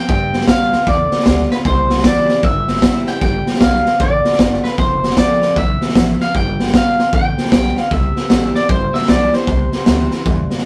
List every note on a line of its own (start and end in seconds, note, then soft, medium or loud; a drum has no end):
0.09 0.53 G2 medium
0.09 0.46 G3 loud
0.09 0.48 G5 loud
0.09 kick loud
0.09 snare soft
0.33 snare soft
0.41 snare soft
0.47 0.71 G3 medium
0.47 0.72 B3 loud
0.47 0.71 F4 loud
0.47 0.88 F5 loud
0.47 kick medium
0.47 snare loud
0.47 hi-hat pedal medium
0.72 0.87 B3 soft
0.72 0.86 F4 medium
0.72 muted upright bass stroke medium
0.72 snare soft
0.87 1.08 E2 medium
0.87 1.62 D3 medium
0.87 1.51 D5 medium
0.87 kick loud
0.87 snare soft
1.11 muted upright bass stroke medium
1.11 snare soft
1.19 snare soft
1.26 1.47 D2 medium
1.26 1.50 G3 medium
1.26 1.50 B3 medium
1.26 1.49 F4 loud
1.26 kick medium
1.26 snare loud
1.26 hi-hat pedal medium
1.50 1.65 B3 soft
1.50 1.64 F4 medium
1.50 1.57 B4 medium
1.50 muted upright bass stroke medium
1.50 snare soft
1.65 2.10 C2 medium
1.65 2.41 C3 medium
1.65 2.06 C5 loud
1.65 kick loud
1.65 snare soft
1.90 snare soft
1.97 snare soft
2.04 2.28 E3 medium
2.04 2.28 G3 medium
2.04 2.29 C4 loud
2.04 2.27 E4 loud
2.04 2.46 D5 medium
2.04 kick medium
2.04 snare loud
2.04 hi-hat pedal medium
2.29 2.44 C4 medium
2.29 2.43 E4 medium
2.29 muted upright bass stroke medium
2.29 snare soft
2.43 2.88 G1 medium
2.43 3.19 G2 medium
2.43 3.04 E5 loud
2.43 kick loud
2.43 snare soft
2.68 snare soft
2.75 snare soft
2.82 3.06 E3 medium
2.82 3.06 G3 loud
2.82 3.07 C4 medium
2.82 3.06 E4 loud
2.82 kick medium
2.82 snare loud
2.82 hi-hat pedal medium
3.07 3.22 C4 soft
3.07 3.21 E4 medium
3.07 3.20 G5 medium
3.07 muted upright bass stroke medium
3.07 snare soft
3.21 3.39 G1 medium
3.21 3.59 G3 medium
3.21 3.60 G5 loud
3.21 kick loud
3.21 snare soft
3.47 muted upright bass stroke medium
3.47 snare soft
3.54 snare soft
3.60 3.82 B1 medium
3.60 3.84 G3 medium
3.60 3.85 B3 medium
3.60 3.84 F4 loud
3.60 4.01 F5 loud
3.60 kick medium
3.60 snare loud
3.60 hi-hat pedal medium
3.85 4.00 B3 medium
3.85 3.99 F4 medium
3.85 muted upright bass stroke medium
3.85 snare soft
4.00 4.21 A1 medium
4.00 4.75 D3 loud
4.00 4.63 D5 medium
4.00 kick loud
4.00 snare soft
4.25 muted upright bass stroke medium
4.25 snare soft
4.32 snare soft
4.38 4.60 G1 medium
4.38 4.62 G3 medium
4.38 4.63 B3 loud
4.38 4.63 F4 medium
4.38 kick medium
4.38 snare loud
4.38 hi-hat pedal medium
4.64 4.79 B3 soft
4.64 4.78 F4 medium
4.64 4.77 B4 medium
4.64 muted upright bass stroke medium
4.64 snare soft
4.78 5.23 F1 medium
4.78 5.53 F2 loud
4.78 5.15 C5 medium
4.78 kick loud
4.78 snare soft
5.03 snare soft
5.10 snare soft
5.16 5.41 F3 medium
5.16 5.41 A3 medium
5.16 5.41 C4 medium
5.16 5.40 F4 loud
5.16 5.58 D5 loud
5.16 kick medium
5.16 snare loud
5.16 hi-hat pedal medium
5.42 5.56 C4 medium
5.42 5.56 F4 medium
5.42 muted upright bass stroke medium
5.42 snare soft
5.56 5.77 B1 medium
5.56 5.94 E3 medium
5.56 6.21 E5 medium
5.56 kick loud
5.56 snare soft
5.81 muted upright bass stroke medium
5.81 snare soft
5.88 snare soft
5.95 6.17 A1 medium
5.95 6.33 F3 medium
5.95 kick medium
5.95 snare loud
5.95 hi-hat pedal medium
6.20 6.36 F5 medium
6.20 muted upright bass stroke medium
6.20 snare soft
6.34 6.79 G1 medium
6.34 6.72 G3 medium
6.34 6.75 G5 loud
6.34 kick loud
6.34 snare soft
6.60 snare soft
6.67 snare soft
6.73 6.97 G3 medium
6.73 6.98 B3 medium
6.73 6.97 F4 medium
6.73 7.14 F5 medium
6.73 kick medium
6.73 snare loud
6.73 hi-hat pedal medium
6.98 7.13 B3 soft
6.98 7.12 F4 medium
6.98 muted upright bass stroke medium
6.98 snare soft
7.13 7.34 A1 medium
7.13 7.88 D3 loud
7.13 7.51 G5 medium
7.13 kick loud
7.13 snare soft
7.38 muted upright bass stroke medium
7.38 snare soft
7.45 snare soft
7.52 7.73 B1 medium
7.52 7.75 G3 medium
7.52 7.76 B3 medium
7.52 7.75 F4 medium
7.52 7.78 G5 loud
7.52 kick medium
7.52 snare loud
7.52 hi-hat pedal medium
7.76 7.91 B3 soft
7.76 7.90 F4 medium
7.76 7.92 F5 medium
7.76 muted upright bass stroke medium
7.76 snare soft
7.91 8.15 C2 medium
7.91 8.66 C3 loud
7.91 8.57 E5 loud
7.91 kick loud
7.91 snare soft
8.16 muted upright bass stroke medium
8.16 snare soft
8.30 8.54 A1 loud
8.30 8.54 E3 medium
8.30 8.54 G3 loud
8.30 8.54 C4 medium
8.30 8.53 E4 loud
8.30 snare loud
8.30 hi-hat pedal medium
8.55 8.70 C4 soft
8.55 8.69 E4 medium
8.55 8.69 D5 medium
8.55 muted upright bass stroke medium
8.55 snare soft
8.69 8.93 G1 medium
8.69 9.45 G2 medium
8.69 8.95 C5 medium
8.69 kick loud
8.69 snare soft
8.94 9.07 E5 loud
8.94 muted upright bass stroke medium
8.94 snare soft
9.01 snare soft
9.08 9.32 B1 medium
9.08 9.32 E3 medium
9.08 9.32 G3 medium
9.08 9.33 C4 medium
9.08 9.31 E4 loud
9.08 9.34 D5 loud
9.08 snare loud
9.08 hi-hat pedal medium
9.33 9.48 C4 soft
9.33 9.47 E4 medium
9.33 10.65 C5 medium
9.33 muted upright bass stroke medium
9.33 snare soft
9.47 9.71 C2 medium
9.47 10.23 C3 medium
9.47 kick loud
9.47 snare soft
9.72 muted upright bass stroke medium
9.72 snare soft
9.86 10.11 D2 medium
9.86 10.10 E3 medium
9.86 10.10 G3 medium
9.86 10.11 C4 medium
9.86 10.10 E4 loud
9.86 snare loud
9.86 hi-hat pedal medium
10.11 10.26 C4 soft
10.11 10.25 E4 medium
10.11 muted upright bass stroke medium
10.11 snare soft
10.26 10.50 E2 medium
10.26 10.65 G2 loud
10.26 kick loud
10.26 snare soft
10.50 muted upright bass stroke medium
10.50 snare soft
10.58 snare soft